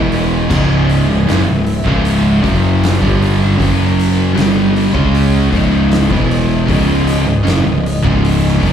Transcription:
Already playing: picked electric bass E1, distorted electric guitar E2 B2 E3, string machine C#4 D#5 G#5
0.12 open hi-hat
0.49 picked electric bass C#1, distorted electric guitar C#2 G#2 C#3, kick, crash
0.89 open hi-hat
1.07 picked electric bass C#1, distorted electric guitar C#2 G#2
1.27 picked electric bass F#1, distorted electric guitar F#2 C#3, string machine E5, snare, open hi-hat
1.46 picked electric bass C#1, distorted electric guitar C#2 G#2
1.67 open hi-hat
1.84 picked electric bass C#1, distorted electric guitar C#2 G#2 C#3, kick
2.05 open hi-hat
2.41 picked electric bass F#1, distorted electric guitar F#2 C#3 F#3, kick, open hi-hat
2.84 snare, open hi-hat
2.99 picked electric bass G1, distorted electric guitar G2 D3 G3, kick
3.22 open hi-hat
3.58 picked electric bass F#1, distorted electric guitar F#2 C#3 F#3, string machine F#3, kick, open hi-hat
3.99 open hi-hat
4.34 picked electric bass G1, distorted electric guitar G2 D3 G3, string machine C#4 D#5, open hi-hat
4.39 snare
4.76 open hi-hat
4.92 picked electric bass C#2, distorted electric guitar C#3 G#3 C#4, kick
5.15 open hi-hat
5.51 picked electric bass C#1, distorted electric guitar C#2 G#2 C#3, kick, open hi-hat
5.92 snare, open hi-hat
6.09 picked electric bass E1, distorted electric guitar E2 B2 E3, kick
6.31 open hi-hat
6.67 picked electric bass C#1, distorted electric guitar C#2 G#2 C#3, kick, open hi-hat
7.07 open hi-hat
7.25 picked electric bass C#1, distorted electric guitar C#2 G#2
7.44 picked electric bass F#1, distorted electric guitar F#2 C#3, open hi-hat
7.48 snare
7.64 picked electric bass C#1, distorted electric guitar C#2 G#2
7.86 open hi-hat
8.02 picked electric bass C#1, distorted electric guitar C#2 G#2 C#3, kick
8.25 open hi-hat
8.47 snare
8.60 picked electric bass F#1, distorted electric guitar F#2 C#3 F#3, kick
8.65 open hi-hat

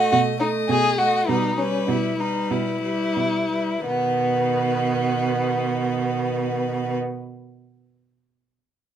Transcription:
Already playing: viola A3, violin F#4 D#5
0.11 cello B2, violin F#4
0.40 viola A3, violin D#4 D#5
0.69 cello B2, violin G#4
0.98 viola A3, violin F#4 D#5
1.27 cello B2, viola G3, violin D#4 B4
1.56 viola G3, violin C#4 B4
1.88 cello B2, violin E4
2.19 viola G3, violin D#4 B4
2.51 cello B2, violin E4
2.82 viola G3, violin B4
3.17 cello B2
3.51 viola G3, violin B4
3.86 cello B2, viola D#3, violin B3 B4

